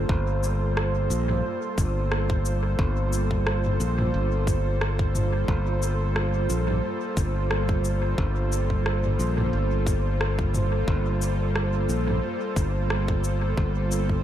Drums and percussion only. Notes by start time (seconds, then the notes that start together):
0.09 kick
0.43 shaker
0.77 cross-stick
1.11 shaker
1.29 mid tom
1.78 kick, shaker
2.12 cross-stick
2.30 kick
2.45 shaker
2.79 kick
3.13 shaker
3.31 kick
3.47 cross-stick
3.65 mid tom
3.80 shaker
3.99 mid tom
4.47 kick, shaker
4.81 cross-stick
4.99 kick
5.15 mid tom, shaker
5.48 kick
5.82 shaker
6.16 cross-stick
6.50 shaker
6.68 mid tom
7.17 kick, shaker
7.51 cross-stick
7.69 kick
7.84 shaker
8.18 kick
8.52 shaker
8.70 kick
8.86 cross-stick
9.04 mid tom
9.20 shaker
9.38 mid tom
9.87 kick, shaker
10.21 cross-stick
10.39 kick
10.54 mid tom, shaker
10.88 kick
11.22 shaker
11.55 cross-stick
11.89 shaker
12.08 mid tom
12.56 kick, shaker
12.90 cross-stick
13.08 kick
13.24 shaker
13.57 kick
13.91 shaker
14.09 kick